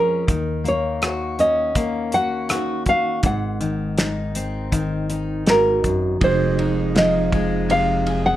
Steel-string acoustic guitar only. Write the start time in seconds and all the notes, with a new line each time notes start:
Already playing: F2 F3 G#3 C#4 G#4
0.27 D#3
0.64 A#3
1.02 F#4
1.39 C#4
1.75 A#3
2.13 F#4
2.51 F#4
2.86 F#4
3.23 G#2
3.60 D#3
3.98 D#4
4.36 C4
4.72 D#3
5.10 D#4
5.47 G#2
5.85 F#2
6.21 F2 G#3
6.59 D#4
6.95 F3
7.33 G#3
7.69 C3
8.07 G#4